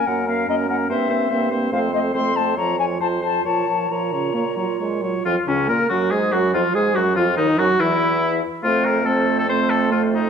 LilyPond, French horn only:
\new Staff \with { instrumentName = "French horn" } { \clef bass \time 4/4 \key bes \minor \tempo 4 = 142 bes8 bes8 bes8 bes8 bes8 bes8 bes8 bes8 | a8 a8 a8 a8 f8 f8 f8 f8 | f8 f8 f8 des8 bes8 ges8 aes8 ges8 | f8 des8 bes8 ges8 aes8 ges8 f8 aes8 |
ges8 f8 ees8 ges8 e4. r8 | a4 c'4 c'4 a4 | }